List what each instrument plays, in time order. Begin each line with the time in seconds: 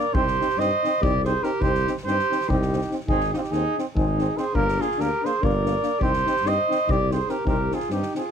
Already playing: alto saxophone A#4, flugelhorn D5
0.13 tuba C2, trombone C4, euphonium D#4, alto saxophone G4, flugelhorn C5, kick
0.27 snare
0.40 trombone C4, euphonium D#4, snare
0.49 snare
0.57 tuba G2, trombone C4, euphonium D#4, alto saxophone C5, flugelhorn D#5, snare
0.84 trombone C4, euphonium D#4, snare
1.02 tuba C2, trombone C4, euphonium D#4, alto saxophone G4, flugelhorn D5, kick
1.24 trombone C4, euphonium D#4, alto saxophone G#4, flugelhorn C5, snare
1.43 trombone C4, euphonium D#4, alto saxophone G4, flugelhorn A#4, snare
1.61 tuba C2, trombone C4, euphonium D#4, alto saxophone G4, flugelhorn C5, kick
1.74 snare
1.86 trombone C4, euphonium D#4, snare
1.97 snare
2.05 tuba G2, trombone C4, euphonium D#4, alto saxophone G4, flugelhorn C5, snare
2.19 snare
2.30 trombone C4, euphonium D#4, snare
2.41 snare
2.49 tuba C2, trombone C4, euphonium D#4, alto saxophone D#4, flugelhorn G4, kick
2.62 snare
2.72 trombone C4, euphonium D#4, snare
2.81 snare
2.90 trombone C4, euphonium D#4, snare
3.00 snare
3.07 tuba G#1, trombone C4, euphonium D#4, alto saxophone D#4, flugelhorn G#4, kick
3.20 snare
3.33 trombone C4, euphonium D#4, alto saxophone D#4, flugelhorn G4, snare
3.37 alto saxophone D4, flugelhorn F4
3.41 alto saxophone D#4, flugelhorn G4, snare
3.50 tuba D#2, trombone C4, alto saxophone D#4, euphonium D#4, flugelhorn G#4, snare
3.76 trombone C4, euphonium D#4, snare
3.95 tuba G#1, trombone C4, alto saxophone D#4, euphonium D#4, flugelhorn G#4, kick
4.17 trombone C4, euphonium D#4, snare
4.36 trombone C4, euphonium D#4, alto saxophone G#4, flugelhorn C5, snare
4.53 tuba G1, trombone A#3, euphonium D4, alto saxophone G4, flugelhorn A#4, kick
4.68 snare
4.79 trombone A#3, euphonium D4, alto saxophone F4, flugelhorn G#4, snare
4.91 snare
4.97 tuba D2, trombone A#3, euphonium D4, alto saxophone G4, flugelhorn A#4, snare
5.22 trombone A#3, euphonium D4, alto saxophone G#4, flugelhorn C5, snare
5.41 tuba G1, trombone A#3, euphonium D4, alto saxophone A#4, flugelhorn D5, kick
5.63 trombone A#3, euphonium D4, snare
5.82 trombone A#3, euphonium D4, snare
5.99 tuba C2, trombone C4, euphonium D#4, alto saxophone G4, flugelhorn C5, kick
6.13 snare
6.26 trombone C4, euphonium D#4, snare
6.36 snare
6.43 tuba G2, trombone C4, euphonium D#4, alto saxophone C5, snare
6.47 flugelhorn D#5
6.69 trombone C4, euphonium D#4, snare
6.87 tuba C2, trombone C4, euphonium D#4, alto saxophone G4, flugelhorn D5, kick
7.10 trombone C4, euphonium D#4, alto saxophone G#4, flugelhorn C5, snare
7.28 trombone C4, euphonium D#4, alto saxophone G4, flugelhorn A#4, snare
7.46 tuba C2, trombone C4, euphonium D#4, alto saxophone G4, flugelhorn A#4, kick
7.70 trombone C4, euphonium D#4, snare
7.74 alto saxophone F4, flugelhorn G#4
7.80 snare
7.89 tuba G2, trombone C4, euphonium D#4, flugelhorn G4, snare
7.93 alto saxophone D#4
8.02 snare
8.13 trombone C4, euphonium D#4, flugelhorn G#4, snare
8.19 alto saxophone F4